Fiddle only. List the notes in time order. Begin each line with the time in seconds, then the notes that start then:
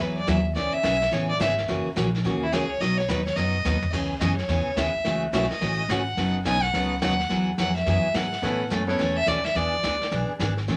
0.01 B4
0.17 D5
0.28 E5
0.55 D5
0.73 E5
1.13 C#5
1.29 D5
1.41 E5
2.43 E4
2.53 G#4
2.70 C#5
2.81 D#5
2.97 C#5
3.09 B4
3.25 C#5
3.36 D#5
4.20 D#5
4.37 C#5
4.77 E5
5.33 E5
5.50 D#5
5.90 F#5
6.46 G#5
6.63 F#5
7.01 F#5
7.59 F#5
7.76 E5
8.15 F#5
8.88 C#5
9.16 E5
9.28 D5
9.44 E5
9.56 D5